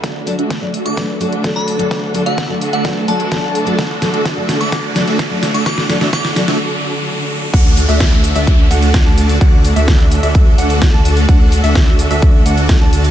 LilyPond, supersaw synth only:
\new Staff \with { instrumentName = "Supersaw synth" } { \time 4/4 \key d \major \tempo 4 = 128 <a d' fis' d'' fis''>8. <a d' fis' d'' e''>4 <a d' fis' d'' e''>8. <a d' fis' d'' fis''>8. <a d' fis' d'' a''>8. | <a d' fis' d''>8. <a d' fis' d'' e''>4 <a d' fis' d'' e''>8. <a d' fis' d'' fis''>8. <a d' fis' d'' a''>8. | <a d' fis' fis''>8. <a d' fis' d'' e''>4 <a d' fis' d'' e''>16 <a d' fis' fis''>8. <a d' fis' d'' e''>4 <a d' fis' d'' e''>16 | <a d' fis' d'' fis''>8. <a d' fis' d'' e''>16 <a d' fis' fis''>8. <a d' fis' d'' e''>16 r2 |
<a d' fis' d'' fis''>8. <a d' fis' d'' e''>4 <a d' fis' d'' e''>8. <a d' fis' d'' fis''>8. <a d' fis' d'' a''>8. | <a d' fis' d''>8. <a d' fis' d'' e''>4 <a d' fis' d'' e''>8. <a d' fis' d'' fis''>8. <a d' fis' d'' a''>8. | <a d' fis' d'' fis''>8. <a d' fis' d'' e''>4 <a d' fis' d'' e''>8. <a d' fis' d'' fis''>8. <a d' fis' d'' a''>8. | }